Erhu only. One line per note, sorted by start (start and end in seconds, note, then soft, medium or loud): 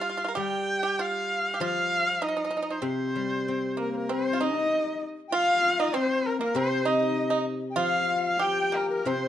0.00 0.39 F5 medium
0.41 1.03 G5 medium
1.01 1.62 F5 medium
1.65 2.26 F5 loud
2.24 2.73 D#5 medium
2.71 2.85 C5 medium
2.87 3.77 C5 medium
3.81 3.95 A#4 medium
3.97 4.15 A#4 medium
4.14 4.45 C5 medium
4.44 5.04 D#5 medium
5.34 5.81 F5 loud
5.80 5.97 D#5 medium
5.96 6.28 C5 medium
6.26 6.41 A#4 medium
6.42 6.59 A#4 medium
6.57 6.89 C5 medium
6.88 7.47 D#5 medium
7.81 8.23 F5 medium
8.27 8.44 F5 medium
8.43 8.77 G5 medium
8.76 8.91 A#4 medium
8.91 9.09 A#4 medium
9.08 9.28 C5 medium